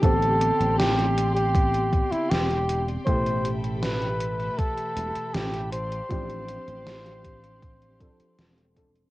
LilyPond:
<<
  \new Staff \with { instrumentName = "String section" } { \time 4/4 \key a \minor \tempo 4 = 79 << { <g' d'' c'''>1 | <a' e'' b''>2.~ <a' e'' b''>8 <g' d'' c'''>8~ | <g' d'' c'''>1 | } \\ { g''1~ | g''2.~ g''8 f''8~ | f''1 | } >> }
  \new Staff \with { instrumentName = "Flugelhorn" } { \time 4/4 \key a \minor a'4 g'8. g'4 e'16 g'8. r16 | c''8. r16 b'4 a'4 g'8 c''8~ | c''2.~ c''8 r8 | }
  \new Staff \with { instrumentName = "FM electric piano" } { \time 4/4 \key a \minor <d b c' g'>2. r4 | <b, e a g'>2. r4 | <f c' d' g'>2~ <f c' d' g'>8 <f c' d' a'>4 <f c' d' a'>8 | }
  \new Staff \with { instrumentName = "Fretless electric bass" } { \clef bass \time 4/4 \key a \minor a,,8 r16 a,,4.~ a,,16 r8 e,,8. r16 | a,,4.~ a,,16 r8. e,,16 r16 a,,8. r16 | a,,8 r16 a,,4.~ a,,16 r8 e,,8. r16 | }
  \new DrumStaff \with { instrumentName = "Drums" } \drummode { \time 4/4 <hh bd>16 hh16 hh16 hh16 <hh sn>16 hh16 hh16 hh16 <hh bd>16 hh16 <hh bd>16 hh16 <hh sn>16 hh16 hh16 hh16 | <hh bd>16 hh16 hh16 hh16 <hh sn>16 hh16 hh16 hh16 <hh bd>16 hh16 hh16 hh16 <hh sn>16 hh16 hh16 hh16 | <hh bd>16 hh16 hh16 hh16 <hh sn>16 hh16 <hh bd>16 hh16 <hh bd>16 hh16 <hh bd>16 hh16 <hh sn>16 hh16 <hh bd>16 hh16 | }
>>